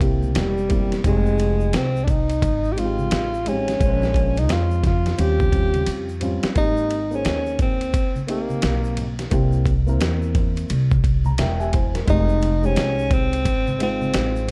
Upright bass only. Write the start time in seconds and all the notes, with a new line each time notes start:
Already playing: C2
0.36 E1
1.05 F1
1.74 C2
2.42 G#1
3.12 A1
3.81 A#1
4.49 F2
5.19 D#2
5.87 F2
6.44 muted upright bass stroke
6.56 G#1
7.25 D#2
7.94 A#1
8.63 B1
9.32 C2
10.01 E2
10.70 C2
11.39 E1
12.08 F1
12.77 C2
13.46 G#1
14.15 A1